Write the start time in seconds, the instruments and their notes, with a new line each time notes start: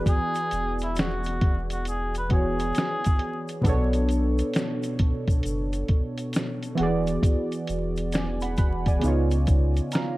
Already playing: synth keys E3 B3 F#4 G#4 D5
0.06 muted trumpet G#4, kick, closed hi-hat, shaker
0.35 closed hi-hat, shaker
0.51 sub bass E1, closed hi-hat, shaker
0.79 closed hi-hat, shaker
0.83 muted trumpet E4
0.96 muted trumpet F#4, snare, closed hi-hat, shaker
1.24 closed hi-hat, shaker
1.41 kick, closed hi-hat
1.70 muted trumpet F#4, closed hi-hat, shaker
1.85 muted trumpet G#4, closed hi-hat, shaker
2.15 muted trumpet B4, closed hi-hat, shaker
2.29 synth keys E3 B3 F#4 G#4 C#5, muted trumpet G#4, kick, closed hi-hat
2.59 closed hi-hat, shaker
2.75 snare, closed hi-hat, shaker
3.04 kick, closed hi-hat, shaker
3.19 closed hi-hat
3.48 closed hi-hat, shaker
3.61 sub bass B1, synth keys B2 B3, kick, closed hi-hat
3.65 synth keys D4 A4 C#5, shaker
3.93 closed hi-hat, shaker
4.09 closed hi-hat, shaker
4.38 closed hi-hat, shaker
4.54 snare, closed hi-hat, shaker
4.83 closed hi-hat, shaker
4.99 kick, closed hi-hat
5.28 kick, closed hi-hat, shaker
5.43 sub bass F#1, closed hi-hat, shaker
5.73 closed hi-hat, shaker
5.88 kick, closed hi-hat
6.18 closed hi-hat, shaker
6.33 snare, closed hi-hat, shaker
6.63 closed hi-hat, shaker
6.75 synth keys E3 B3 F#4, closed hi-hat
6.79 sub bass E1, synth keys G#4 D5
7.07 closed hi-hat, shaker
7.23 kick, closed hi-hat, shaker
7.52 closed hi-hat, shaker
7.67 sub bass E1, closed hi-hat, shaker
7.96 closed hi-hat, shaker
8.12 synth keys D5 G#5, snare, closed hi-hat, shaker
8.41 synth keys F#5 B5, closed hi-hat, shaker
8.57 synth keys F#5 B5, kick, closed hi-hat, shaker
8.86 synth keys D5 G#5, kick, closed hi-hat, shaker
9.00 synth keys C#3 B3, closed hi-hat
9.04 sub bass C#2, synth keys D#4 F4 C#5, shaker
9.31 closed hi-hat, shaker
9.47 kick, closed hi-hat, shaker
9.76 closed hi-hat, shaker
9.92 synth keys F5 A#5, snare, closed hi-hat, shaker